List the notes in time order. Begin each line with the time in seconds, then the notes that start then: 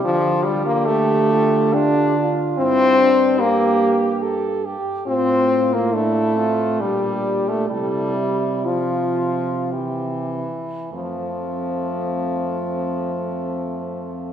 Already playing: G4
0.04 D3 F3 F4
0.45 G3
0.66 A#3
0.86 A3 G4
1.31 F4
1.72 D4 F4 G4
2.17 F4
2.58 G2 C4 E4
3.00 D4
3.39 A#3 G4
4.23 A4
4.65 G4
5.07 A2 C4 F4
5.73 A#3
5.93 A3 D4 E4
6.37 C4 F4
6.80 A#2 G3 D4 G4
7.49 A3
7.69 C3 G3 E4 A4
8.17 E4
8.65 F3 F4
9.71 E3 G4
10.91 F2 F3 A3 C4